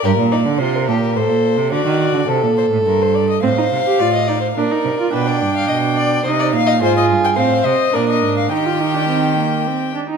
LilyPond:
<<
  \new Staff \with { instrumentName = "Violin" } { \time 3/4 \key g \minor \tempo 4 = 106 bes'8 d''8 c''16 bes'16 a'16 bes'16 c''4 | d''4 a'8 c''8 bes'16 c''16 d''16 ees''16 | f''2 d''4 | g''2 ees''8 f''8 |
\key ees \major c''16 ees''8 g''16 f''8 ees''8 d''16 ees''8 f''16 | g''2~ g''8 r8 | }
  \new Staff \with { instrumentName = "Violin" } { \time 3/4 \key g \minor g'8 ees'8 f'8 g'8 a'4 | fis'4 a'2 | c''4 d''16 ees''16 d''16 c''16 bes'4 | b'16 d''8 f''16 ees''8 d''8 c''16 d''8 ees''16 |
\key ees \major aes'4 c''4 bes'4 | g'2~ g'8 r8 | }
  \new Staff \with { instrumentName = "Viola" } { \time 3/4 \key g \minor r2. | r2. | c'16 ees'8 g'16 f'8 ees'8 d'16 ees'8 f'16 | d'2 ees'4 |
\key ees \major f'4 c'4 d'4 | ees'16 f'16 ees'16 d'16 c'8 bes8 c'8 d'16 ees'16 | }
  \new Staff \with { instrumentName = "Cello" } { \clef bass \time 3/4 \key g \minor g,16 bes,8 d16 c8 bes,8 a,16 bes,8 c16 | d16 ees8 d16 c16 bes,8 a,16 g,4 | a,8 c8 a,4 bes,8 c8 | b,8 g,8 b,4 c8 bes,8 |
\key ees \major aes,8 g,8 a,8 c8 bes,8 aes,8 | ees2~ ees8 r8 | }
>>